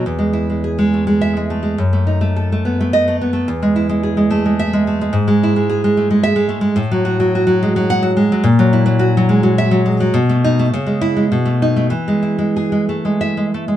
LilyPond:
\new Staff \with { instrumentName = "Nylon-string guitar" } { \clef bass \time 3/4 \key e \major \tempo 4 = 106 << { r2 e''8 r8 | r2 dis''8 r8 | r2 e''8 r8 | r2 e''8 r8 |
r2 fis''8 r8 | r2 e''8 r8 | r8 dis'8 r8 e'8 r8 dis'8 | r2 e''8 r8 | } \\ { e,16 gis16 e'16 gis16 gis'16 gis16 a16 gis8 gis16 a16 gis16 | fis,16 a16 dis'16 a16 a'16 a16 b16 a8 a16 b16 a16 | e,16 gis16 e'16 gis16 gis'16 gis16 a16 gis8 gis16 a16 gis16 | gis,16 gis16 e'16 gis16 gis'16 gis16 a16 gis8 gis16 a16 gis16 |
a,16 fis16 fis'16 fis16 fis'16 fis16 gis16 fis8 fis16 gis16 fis16 | ais,16 fis16 e'16 fis16 fis'16 fis16 gis16 fis8 fis16 gis16 fis16 | b,16 a8 a16 cis16 gis8 gis16 b,16 a8 a16 | e16 gis16 e'16 gis16 gis'16 gis16 a16 gis8 gis16 a16 gis16 | } >> }